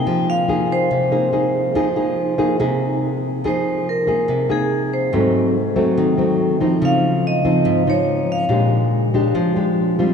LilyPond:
<<
  \new Staff \with { instrumentName = "Vibraphone" } { \time 4/4 \key f \minor \tempo 4 = 142 g''8 f''4 c''2~ c''8~ | c''2. r4 | c''4 bes'4. aes'4 c''8~ | c''8 r2. r8 |
f''4 ees''4. des''4 f''8~ | f''8 r2. r8 | }
  \new Staff \with { instrumentName = "Nylon-string guitar" } { \time 4/4 \key f \minor << { <bes ees' aes'>4 <bes ees' aes'>4 r8 <bes ees' aes'>8 <bes ees' aes'>4 | <bes ees' aes'>8 <bes ees' aes'>4 <bes ees' aes'>8 <bes ees' aes'>2 | <bes ees' aes'>4 r8 <bes ees' aes'>4 <bes ees' aes'>4. | <ges a c'>4 r8 <ges a c'>4 <ges a c'>4 <f c' ees'>8~ |
<f c' ees'>4. <f c' ees'>4 <f ees'>4. | <aes d' g'>4. <aes d' g'>4 <aes d' g'>4 <g c' f'>8 | } \\ { f2 c2 | f2 c2 | f2 c2 | aes,2 ees2 |
des2 aes,2 | bes,2 f2 | } >> }
>>